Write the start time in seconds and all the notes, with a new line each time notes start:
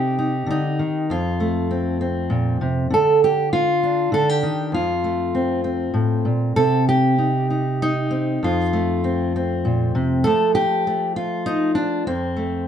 Already playing: C3 D#4 G4
0.19 D#4
0.46 D3
0.51 D#4
0.79 D#3
1.10 F2 F4
1.40 A3
1.71 C4
2.01 C4
2.30 A#2
2.61 C3
2.90 D3 A4
3.24 G4
3.53 F4
3.83 D4
4.12 D3 A4
4.29 G4
4.43 D#3
4.72 F2 F4
5.04 A3
5.35 C4
5.64 C4
5.94 A2
6.25 A#2
6.56 C3 A4
6.89 G4
7.18 D#4
7.50 D#4
7.82 D#4
8.11 C4
8.43 F2 F4
8.73 A3
9.04 C4
9.36 C4
9.65 A#2
9.95 C3
10.24 F3 A3 A4
10.55 G4
10.87 A3
11.16 F4
11.46 D#4
11.75 D4
12.07 F2 C4
12.37 A3